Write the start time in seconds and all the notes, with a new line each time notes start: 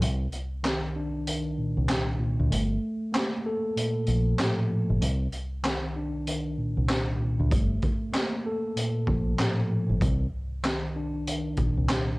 0.01 C2, closed hi-hat
0.32 closed hi-hat
0.63 D#3, snare, clap, closed hi-hat
0.96 D4
1.27 D#3, closed hi-hat
1.58 A#2
1.77 C2
1.89 C2, snare, clap, closed hi-hat
2.19 A#2
2.40 D2
2.50 G1 A3, closed hi-hat
3.12 A#3, snare, clap, closed hi-hat
3.46 A4
3.76 A#2, closed hi-hat
4.06 A#1 F3, closed hi-hat
4.38 A2, snare, clap, closed hi-hat
4.70 F3
4.90 G1
5.01 C2, closed hi-hat
5.32 closed hi-hat
5.63 D#3, snare, clap, closed hi-hat
5.96 D4
6.27 D#3, closed hi-hat
6.58 A#2
6.77 C2
6.89 C2, snare, clap, closed hi-hat
7.19 A#2
7.40 D2
7.50 G1 A3, kick, closed hi-hat
7.82 kick, closed hi-hat
8.12 A#3, snare, clap, closed hi-hat
8.46 A4
8.76 A#2, closed hi-hat
9.07 A#1 F3, kick
9.38 A2, snare, clap, closed hi-hat
9.70 F3
9.90 G1
10.01 C2, kick, closed hi-hat
10.63 D#3, snare, clap, closed hi-hat
10.96 D4
11.27 D#3, closed hi-hat
11.57 A#2, kick, closed hi-hat
11.77 C2
11.89 C2, snare, clap, closed hi-hat